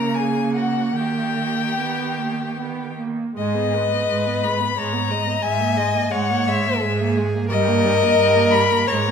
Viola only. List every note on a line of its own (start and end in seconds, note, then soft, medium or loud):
0.00 1.65 A#3 medium
1.76 2.19 B3 medium
2.17 2.57 A#3 medium
2.58 2.97 B3 medium
2.98 3.35 A#3 medium
3.36 3.56 G#3 medium
3.55 3.75 B3 medium
3.74 3.94 G#3 medium
3.92 4.09 B3 medium
4.09 4.28 G#3 medium
4.27 4.46 B3 medium
4.44 4.62 G#3 medium
4.60 4.77 B3 medium
4.78 4.95 G#3 medium
4.93 5.13 B3 medium
5.11 5.28 G#3 medium
5.27 5.42 B3 medium
5.43 5.62 G#3 medium
5.60 5.78 A#3 medium
5.77 5.96 G#3 medium
5.94 6.11 A#3 medium
6.12 6.32 G#3 medium
6.30 6.49 A#3 medium
6.48 6.68 G#3 medium
6.66 6.82 A#3 medium
6.83 7.02 G#3 medium
7.00 7.19 A#3 medium
7.17 7.36 G#3 medium
7.35 7.50 A#3 medium
7.51 7.69 G3 medium
7.68 7.85 A#3 medium
7.84 8.04 G3 medium
8.02 8.18 A#3 medium
8.19 8.36 G3 medium
8.35 8.55 A#3 medium
8.54 8.72 G3 medium
8.71 8.88 A#3 medium
8.90 9.09 G#3 medium
9.08 9.11 B3 medium